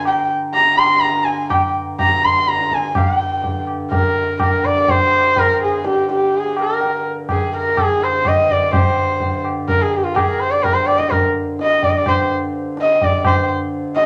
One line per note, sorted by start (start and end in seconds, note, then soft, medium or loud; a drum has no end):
0.00 2.92 G2 medium
0.00 2.92 D3 medium
0.05 0.29 G5 medium
0.05 tabla na medium
0.54 0.79 A#5 loud
0.54 tabla tin medium
0.78 1.02 C6 loud
0.78 tabla na medium
1.00 1.26 A#5 medium
1.00 tabla tin medium
1.25 1.49 G#5 medium
1.49 1.72 G5 medium
1.49 tabla na medium
1.49 tabla ge medium
1.99 2.26 A#5 medium
1.99 tabla na medium
1.99 tabla ge medium
2.24 2.49 C6 medium
2.24 tabla ge medium
2.47 2.75 A#5 medium
2.47 tabla te medium
2.59 tabla te medium
2.71 2.96 G#5 medium
2.71 tabla ke medium
2.84 tabla te medium
2.94 8.72 G2 medium
2.94 8.73 D3 medium
2.94 3.17 F5 medium
2.94 tabla na loud
2.94 tabla ge medium
3.17 3.65 G5 medium
3.44 tabla tin medium
3.44 tabla ge medium
3.67 tabla na medium
3.92 4.37 A#4 medium
3.92 tabla tin medium
3.92 tabla ge medium
4.40 4.67 A#4 medium
4.40 tabla na medium
4.40 tabla ge medium
4.64 4.91 D5 medium
4.64 tabla ge soft
4.88 5.40 C5 loud
4.88 tabla tin medium
4.88 tabla ge medium
5.12 tabla na medium
5.36 5.62 A#4 medium
5.36 tabla tin medium
5.36 tabla ge medium
5.63 5.84 G#4 medium
5.85 6.09 G4 medium
5.85 tabla te medium
6.09 6.39 G4 medium
6.09 tabla te medium
6.33 tabla tin medium
6.37 6.59 G#4 medium
6.57 tabla na medium
6.62 7.04 A#4 medium
6.81 tabla tin medium
7.29 7.53 G#4 medium
7.29 tabla na medium
7.29 tabla ge medium
7.56 7.84 A#4 medium
7.77 tabla na medium
7.77 tabla ge medium
7.84 8.05 G#4 medium
8.01 8.29 C5 medium
8.01 tabla te medium
8.25 8.52 D#5 loud
8.25 tabla na medium
8.25 tabla ge medium
8.49 8.74 D5 medium
8.49 tabla ge medium
8.73 14.06 G2 medium
8.73 14.06 D3 medium
8.73 9.41 C5 medium
8.73 tabla na loud
8.73 tabla ge medium
9.20 tabla tin medium
9.20 tabla ge medium
9.45 tabla na medium
9.68 9.83 A#4 medium
9.68 tabla tin medium
9.68 tabla ge medium
9.82 9.95 G#4 medium
9.93 10.06 G4 medium
10.05 10.13 F4 medium
10.14 10.30 G#4 medium
10.14 10.18 A#4 medium
10.14 tabla na medium
10.14 tabla ge medium
10.29 10.42 A#4 medium
10.40 10.52 C5 medium
10.51 10.65 D5 medium
10.63 10.75 A#4 loud
10.63 tabla tin medium
10.63 tabla ge medium
10.74 10.88 C5 medium
10.86 11.00 D5 medium
10.86 tabla na medium
10.98 11.12 D#5 medium
10.98 tabla ke medium
11.10 11.23 A#4 medium
11.10 tabla tin medium
11.10 tabla ge medium
11.59 11.86 D#5 loud
11.59 tabla te medium
11.83 11.91 D5 medium
11.83 tabla tin medium
11.83 tabla ge medium
11.90 11.99 D#5 medium
11.97 12.08 D5 medium
12.06 12.30 C5 medium
12.06 tabla na medium
12.06 tabla ge medium
12.77 tabla te medium
12.82 13.06 D#5 medium
13.01 13.26 D5 medium
13.01 tabla tin medium
13.01 tabla ge medium
13.25 13.48 C5 medium
13.25 tabla na medium
13.25 tabla ge medium
13.96 14.06 D#5 loud
13.96 tabla te medium